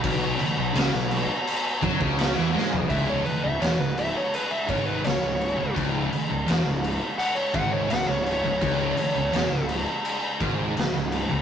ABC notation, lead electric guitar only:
X:1
M:4/4
L:1/16
Q:1/4=84
K:C#m
V:1 name="Lead electric guitar"
z16 | e c B e c B e c B e c B c4 | z8 f c f c f c c2- | c6 z8 z2 |]